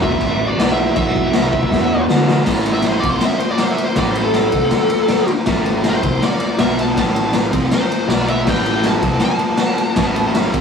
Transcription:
Already playing: E1
0.02 E2 B2 E3 E5, kick
0.12 kick
0.21 A1 E2 B2 E3, kick, crash
0.47 D5
0.58 B1 E2 B2 E3, snare, crash
0.72 E5
0.78 E2 B2 E3
0.95 B1 E2 B2 E3 E5, kick, crash
1.16 kick
1.33 C2 E2 B2 E3, snare, crash
1.52 E2 B2 E3, kick
1.63 kick
1.71 E2 B2 E3, kick, snare
2.09 D2 E2 B2 E3, snare
2.27 E2 B2 E3, snare
2.45 A1 A2 A3, kick, snare, crash
2.66 ride
2.73 E5
2.82 snare, ride
2.89 C5
2.99 C2 D5
3.03 C3 C4, kick, ride
3.09 C5
3.21 snare, ride
3.25 E5
3.38 C5, ride
3.50 D5
3.58 snare, ride
3.64 C5
3.71 E5
3.78 ride
3.84 C5
3.96 A1 A2 A3 D5, kick, snare, ride
4.09 C5
4.16 ride
4.24 A4
4.34 snare, ride
4.52 C2 C3 C4, kick, ride
4.71 snare, ride
4.90 ride
5.08 snare, ride
5.28 ride
5.46 A1 A2 A3, kick, snare, ride
5.66 ride
5.84 snare, ride
5.89 C5
6.03 C2 C3 C4, kick, ride
6.22 D5, snare, ride
6.40 ride
6.58 B1 B2 B3 E5, snare, ride
6.79 A5, ride
6.94 A1 A2 A3, kick, snare, ride
6.99 A5
7.16 ride
7.33 snare, ride
7.52 C2 C3 C4, kick, ride
7.71 C5, snare, ride
7.92 ride
8.07 B1 B2 B3 D5, snare, ride
8.28 E5, ride
8.46 A1 A2 A3 G5, kick, snare, crash
8.66 ride
8.84 A5, snare, ride
9.02 C2 C3 C4, kick, ride
9.20 snare, ride
9.25 A5
9.39 ride
9.58 snare, ride
9.78 ride
9.96 A1 A2 A3, kick, snare, ride
10.16 ride
10.35 snare, ride
10.54 C2 C3 C4, kick, ride

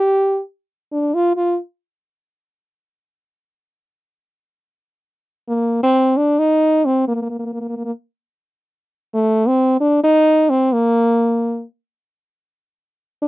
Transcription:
Already playing: G4
0.92 D4
1.14 F4
1.36 F4
5.48 A#3
5.83 C4
6.17 D4
6.39 D#4
6.85 C4
7.08 A#3
7.15 A#3
7.22 A#3
7.30 A#3
7.39 A#3
7.46 A#3
7.53 A#3
7.61 A#3
7.69 A#3
7.77 A#3
7.85 A#3
9.14 A3
9.48 C4
9.80 D4
10.04 D#4
10.50 C4
10.73 A#3
13.22 D4

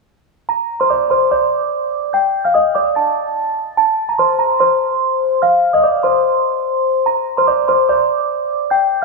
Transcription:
0.49 A#5 A#6
0.80 C5 C6
0.90 D5 D6
1.10 C5 C6
1.31 D5 D6
2.13 G5 G6
2.44 F5 F6
2.54 D#5 D#6
2.75 D5 D6
2.95 A5 A6
3.77 A5 A6
4.09 A#5 A#6
4.18 C5 C6
4.39 A#5 A#6
4.59 C5 C6
5.42 F5 F6
5.73 D#5 D#6
5.83 D5 D6
6.03 C5 C6
7.06 A#5 A#6
7.37 C5 C6
7.47 D5 D6
7.68 C5 C6
7.88 D5 D6
8.70 G5 G6

